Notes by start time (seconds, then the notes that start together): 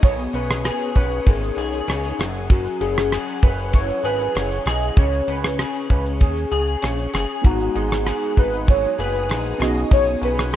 Already playing: F#3 D#4 G#4 C#5 G#5 D#6
0.03 B1 B2 C#5, kick, ride, shaker
0.18 shaker
0.33 B1 C#4 B4, ride, shaker
0.49 cross-stick, shaker
0.65 G#4, cross-stick, ride, shaker
0.81 shaker
0.95 B1 C#4 B4, kick, ride, shaker
1.11 shaker
1.26 G#1 D#3 G#4, kick, ride, shaker
1.42 shaker
1.57 B1 G#4, ride, shaker
1.73 shaker
1.88 C#2 C#4, cross-stick, ride, shaker
2.04 shaker
2.19 F#1 F#2 F#5, cross-stick, ride, shaker
2.34 shaker
2.50 F#2 F#4, kick, ride, shaker
2.66 shaker
2.81 F#1 C#4 G#4, ride, shaker
2.97 cross-stick, shaker
3.12 G#4, cross-stick, ride, shaker
3.28 shaker
3.43 F#1 C#4 B4, kick, ride, shaker
3.58 shaker
3.73 E3 C#5, kick, ride, shaker
3.89 shaker
4.04 G#1 G#4 B4, ride, shaker
4.20 shaker
4.35 F#1 C#4 C#5, cross-stick, ride, shaker
4.50 shaker
4.66 B1 G#4 D#5, cross-stick, ride, shaker
4.81 shaker
4.97 C#2 C#3 G#4 C#5, kick, ride, shaker
5.12 shaker
5.28 C#2 C#4 B4, ride, shaker
5.43 cross-stick, shaker
5.59 G#4, cross-stick, ride, shaker
5.75 shaker
5.90 C#2 C#4 B4, kick, ride, shaker
6.05 shaker
6.20 D#2 G#4, kick, ride, shaker
6.36 shaker
6.51 C#2 G#4, ride, shaker
6.67 shaker
6.82 A#1 C#4, cross-stick, ride, shaker
6.98 shaker
7.13 F#1 G#4, cross-stick, ride, shaker
7.29 shaker
7.42 G#1 G#2 B3 D#4 F#4 F#5 D#6, kick, ride, shaker
7.47 A#5
7.60 shaker
7.75 G#1 D#4 G#4, ride, shaker
7.91 cross-stick, shaker
8.06 G#4, cross-stick, ride, shaker
8.22 shaker
8.37 G#1 D#4 B4, kick, ride, shaker
8.53 shaker
8.68 F#3 C#5, kick, ride, shaker
8.84 shaker
8.99 F#1 G#4 B4, ride, shaker
9.15 shaker
9.29 A#1 D#4, cross-stick, ride, shaker
9.45 shaker
9.58 B1 B2 C#4 D4 F#4 C#5 D#5, cross-stick, ride, shaker
9.63 D#4 G#4
9.76 shaker
9.91 B1 B2 C#5, kick, ride, shaker
10.07 shaker
10.22 B1 C#4 B4, ride, shaker
10.38 cross-stick, shaker
10.53 G#4